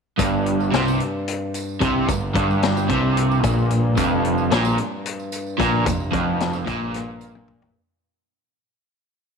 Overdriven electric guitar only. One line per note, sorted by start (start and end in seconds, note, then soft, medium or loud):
0.18 0.72 G2 medium
0.71 0.99 C3 loud
1.81 2.07 C3 medium
2.08 2.30 G2 medium
2.34 2.88 G2 medium
2.89 3.42 C3 medium
3.42 3.96 A#2 medium
3.96 4.50 F2 medium
4.51 4.77 A#2 loud
5.58 5.85 A#2 medium
5.85 6.07 F2 medium
6.11 6.65 F2 loud
6.66 7.73 A#2 medium